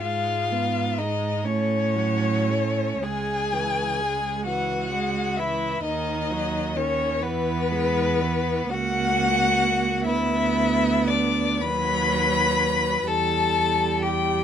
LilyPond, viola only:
\new Staff \with { instrumentName = "Viola" } { \clef bass \time 6/8 \key e \mixolydian \tempo 4. = 42 aes8 ces'8 aes8 a8 fis8 a8 | gis8 e8 gis8 e8 gis8 e8 | dis8 fis8 dis8 e8 gis8 e8 | \key b \minor ais4. b4. |
fis4. g4. | }